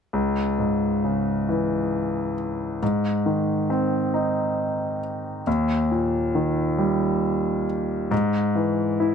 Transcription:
0, 0, Header, 1, 2, 480
1, 0, Start_track
1, 0, Key_signature, 4, "minor"
1, 0, Tempo, 887574
1, 75, Time_signature, 6, 3, 24, 8
1, 4947, End_track
2, 0, Start_track
2, 0, Title_t, "Grand piano"
2, 0, Program_c, 0, 0
2, 71, Note_on_c, 0, 37, 49
2, 182, Control_c, 0, 64, 127
2, 318, Note_on_c, 0, 44, 34
2, 564, Note_on_c, 0, 49, 32
2, 805, Note_on_c, 0, 52, 35
2, 1261, Note_off_c, 0, 44, 0
2, 1500, Note_off_c, 0, 37, 0
2, 1504, Note_off_c, 0, 49, 0
2, 1504, Note_off_c, 0, 52, 0
2, 1528, Note_on_c, 0, 44, 49
2, 1530, Control_c, 0, 64, 0
2, 1635, Control_c, 0, 64, 127
2, 1763, Note_on_c, 0, 51, 35
2, 2001, Note_on_c, 0, 60, 37
2, 2239, Note_on_c, 0, 63, 37
2, 2696, Note_off_c, 0, 51, 0
2, 2934, Note_off_c, 0, 63, 0
2, 2935, Note_off_c, 0, 60, 0
2, 2938, Note_off_c, 0, 44, 0
2, 2959, Note_on_c, 0, 39, 53
2, 2965, Control_c, 0, 64, 0
2, 3062, Control_c, 0, 64, 127
2, 3199, Note_on_c, 0, 46, 38
2, 3434, Note_on_c, 0, 51, 36
2, 3669, Note_on_c, 0, 55, 41
2, 4129, Note_off_c, 0, 46, 0
2, 4366, Note_off_c, 0, 55, 0
2, 4367, Note_off_c, 0, 51, 0
2, 4368, Note_off_c, 0, 39, 0
2, 4386, Note_on_c, 0, 44, 55
2, 4397, Control_c, 0, 64, 0
2, 4495, Control_c, 0, 64, 127
2, 4625, Note_on_c, 0, 52, 39
2, 4867, Note_on_c, 0, 64, 39
2, 4947, Note_off_c, 0, 44, 0
2, 4947, Note_off_c, 0, 52, 0
2, 4947, Note_off_c, 0, 64, 0
2, 4947, End_track
0, 0, End_of_file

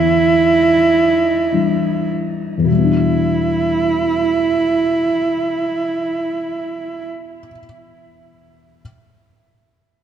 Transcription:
0, 0, Header, 1, 3, 480
1, 0, Start_track
1, 0, Key_signature, 1, "minor"
1, 0, Tempo, 930233
1, 250, Tempo, 1036269
1, 730, Tempo, 1188119
1, 1207, Time_signature, 3, 2, 24, 8
1, 2170, Tempo, 1242236
1, 4083, End_track
2, 0, Start_track
2, 0, Title_t, "Cello"
2, 0, Program_c, 0, 42
2, 0, Note_on_c, 0, 64, 76
2, 948, Note_off_c, 0, 64, 0
2, 1203, Note_on_c, 0, 64, 58
2, 2933, Note_off_c, 0, 64, 0
2, 4083, End_track
3, 0, Start_track
3, 0, Title_t, "Felt piano"
3, 0, Program_c, 1, 0
3, 0, Control_c, 1, 64, 127
3, 0, Note_on_c, 1, 40, 43
3, 731, Note_on_c, 1, 52, 26
3, 733, Note_on_c, 1, 55, 26
3, 735, Note_on_c, 1, 62, 31
3, 1150, Note_off_c, 1, 40, 0
3, 1156, Note_on_c, 1, 40, 32
3, 1182, Note_on_c, 1, 47, 31
3, 1193, Note_off_c, 1, 52, 0
3, 1194, Note_off_c, 1, 55, 0
3, 1195, Note_off_c, 1, 62, 0
3, 1209, Note_on_c, 1, 55, 31
3, 1211, Control_c, 1, 64, 0
3, 1234, Note_on_c, 1, 59, 30
3, 1262, Note_on_c, 1, 62, 39
3, 1283, Control_c, 1, 64, 127
3, 3060, Note_off_c, 1, 40, 0
3, 3085, Note_off_c, 1, 47, 0
3, 3110, Note_off_c, 1, 55, 0
3, 3134, Note_off_c, 1, 59, 0
3, 3161, Note_off_c, 1, 62, 0
3, 3612, Control_c, 1, 64, 0
3, 4083, End_track
0, 0, End_of_file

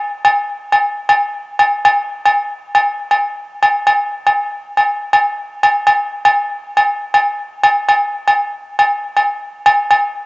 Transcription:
0, 0, Header, 1, 2, 480
1, 0, Start_track
1, 0, Tempo, 502934
1, 96, Time_signature, 4, 2, 24, 8
1, 9791, End_track
2, 0, Start_track
2, 0, Title_t, "Drums"
2, 236, Note_on_c, 9, 68, 68
2, 331, Note_off_c, 9, 68, 0
2, 690, Note_on_c, 9, 68, 58
2, 786, Note_off_c, 9, 68, 0
2, 1040, Note_on_c, 9, 68, 67
2, 1136, Note_off_c, 9, 68, 0
2, 1519, Note_on_c, 9, 68, 65
2, 1615, Note_off_c, 9, 68, 0
2, 1765, Note_on_c, 9, 68, 75
2, 1860, Note_off_c, 9, 68, 0
2, 2152, Note_on_c, 9, 68, 62
2, 2247, Note_off_c, 9, 68, 0
2, 2622, Note_on_c, 9, 68, 62
2, 2718, Note_off_c, 9, 68, 0
2, 2968, Note_on_c, 9, 68, 57
2, 3063, Note_off_c, 9, 68, 0
2, 3460, Note_on_c, 9, 68, 62
2, 3556, Note_off_c, 9, 68, 0
2, 3692, Note_on_c, 9, 68, 61
2, 3787, Note_off_c, 9, 68, 0
2, 4071, Note_on_c, 9, 68, 62
2, 4166, Note_off_c, 9, 68, 0
2, 4554, Note_on_c, 9, 68, 54
2, 4650, Note_off_c, 9, 68, 0
2, 4897, Note_on_c, 9, 68, 60
2, 4993, Note_off_c, 9, 68, 0
2, 5377, Note_on_c, 9, 68, 63
2, 5472, Note_off_c, 9, 68, 0
2, 5602, Note_on_c, 9, 68, 66
2, 5697, Note_off_c, 9, 68, 0
2, 5967, Note_on_c, 9, 68, 67
2, 6063, Note_off_c, 9, 68, 0
2, 6462, Note_on_c, 9, 68, 62
2, 6557, Note_off_c, 9, 68, 0
2, 6816, Note_on_c, 9, 68, 64
2, 6911, Note_off_c, 9, 68, 0
2, 7288, Note_on_c, 9, 68, 70
2, 7383, Note_off_c, 9, 68, 0
2, 7527, Note_on_c, 9, 68, 67
2, 7622, Note_off_c, 9, 68, 0
2, 7898, Note_on_c, 9, 68, 57
2, 7994, Note_off_c, 9, 68, 0
2, 8387, Note_on_c, 9, 68, 60
2, 8483, Note_off_c, 9, 68, 0
2, 8747, Note_on_c, 9, 68, 55
2, 8842, Note_off_c, 9, 68, 0
2, 9219, Note_on_c, 9, 68, 71
2, 9314, Note_off_c, 9, 68, 0
2, 9454, Note_on_c, 9, 68, 65
2, 9550, Note_off_c, 9, 68, 0
2, 9791, End_track
0, 0, End_of_file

